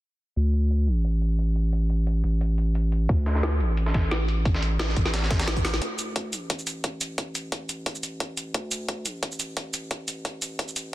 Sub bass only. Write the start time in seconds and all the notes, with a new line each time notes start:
0.36 D2
0.87 A1
2.24 A1
3.09 D2
3.60 A1
4.97 A1
5.82 D2
6.33 A1
7.69 A1
8.54 D2
9.05 A1
10.42 A1
10.76 A1